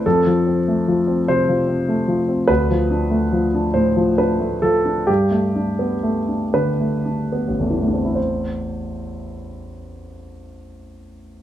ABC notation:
X:1
M:6/8
L:1/16
Q:3/8=43
K:Am
V:1 name="Grand piano"
A6 c6 | B6 c2 B2 A2 | G6 B6 | [A,,,E,,E,A,CEc]12 |]
V:2 name="Grand piano"
F,, F, C A, F, C C, F, C A, F, C | D,, F, D A, F, D A,, F, D A, F, D | G,, A, D B, A, D D, A, D B, A, D | z12 |]